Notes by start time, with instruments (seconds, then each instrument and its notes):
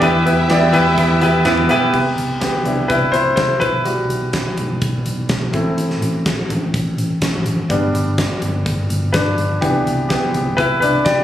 0.01 picked electric bass E2, clean electric guitar E3 B3 E4 G4 B4, grand piano E3 B3 E4 G4 B4, violin section E4 E5, kick, closed hi-hat
0.25 picked electric bass E2, grand piano B3 E4 G4 B4, clean electric guitar E4 G4 B4, closed hi-hat
0.49 picked electric bass E2, clean electric guitar E3 B3 E4 G4 B4, grand piano B3 E4 G4 D5, kick, snare, closed hi-hat
0.72 picked electric bass E2, grand piano B3 E4 G4 B4, clean electric guitar E4 G4 B4, closed hi-hat, floor tom
0.96 picked electric bass E2, clean electric guitar B3 E4 G4 B4, grand piano B3 E4 G4 B4, kick, closed hi-hat
1.21 picked electric bass E2, grand piano B3 E4 G4 B4, clean electric guitar E4 G4 B4, closed hi-hat
1.45 picked electric bass E2, clean electric guitar E3 B3 E4 G4 B4, grand piano B3 E4 G4 B4, kick, snare, closed hi-hat
1.58 floor tom
1.69 picked electric bass B1, grand piano B3 E4 G4 B4, clean electric guitar E4 G4 B4, closed hi-hat
1.93 picked electric bass C2, grand piano B3 G4, kick, crash
2.18 picked electric bass C2, closed hi-hat
2.40 grand piano B3 G4, kick, snare, closed hi-hat
2.65 picked electric bass C2, grand piano B3 D4 E4, closed hi-hat
2.88 picked electric bass C2, grand piano E4 B4, kick, closed hi-hat
3.12 picked electric bass C2, grand piano E4 C5, closed hi-hat
3.36 picked electric bass C2, grand piano E4 C5, kick, snare, closed hi-hat
3.60 picked electric bass B1, grand piano E4 B4, kick, closed hi-hat
3.84 grand piano G3 E4 F#4, closed hi-hat
4.09 picked electric bass B1, closed hi-hat
4.33 kick, snare, closed hi-hat
4.57 picked electric bass B1, closed hi-hat, floor tom
4.82 picked electric bass B1, kick, closed hi-hat
5.06 picked electric bass B1, closed hi-hat
5.29 picked electric bass B1, kick, snare, closed hi-hat
5.41 floor tom
5.53 picked electric bass A1, grand piano A3 C4 E4, kick, closed hi-hat
5.78 closed hi-hat
5.90 snare
6.02 picked electric bass A1, closed hi-hat
6.26 kick, snare, closed hi-hat
6.49 picked electric bass A1, closed hi-hat, floor tom
6.74 picked electric bass A1, kick, closed hi-hat
6.98 picked electric bass A1, closed hi-hat
7.22 picked electric bass A1, kick, snare, closed hi-hat
7.34 floor tom
7.46 picked electric bass A1, closed hi-hat
7.69 picked electric bass G1, grand piano G3 B3 D4, kick, closed hi-hat
7.94 picked electric bass G1, closed hi-hat
8.18 kick, snare, closed hi-hat
8.42 picked electric bass G1, closed hi-hat, floor tom
8.66 picked electric bass G1, kick, closed hi-hat
8.90 picked electric bass G1, closed hi-hat
9.13 picked electric bass G1, grand piano D4 B4, kick, snare, closed hi-hat
9.26 floor tom
9.38 picked electric bass G1, closed hi-hat
9.61 picked electric bass C2, grand piano E3 B3 D4 G4, kick, closed hi-hat
9.86 picked electric bass C2, closed hi-hat
10.09 grand piano B3 G4, kick, snare, closed hi-hat
10.34 picked electric bass C2, closed hi-hat, floor tom
10.57 picked electric bass C2, grand piano E4 B4, kick, closed hi-hat
10.80 picked electric bass C2, grand piano D4 B4, closed hi-hat
11.05 picked electric bass C2, grand piano G4 D5, kick, snare, closed hi-hat
11.18 floor tom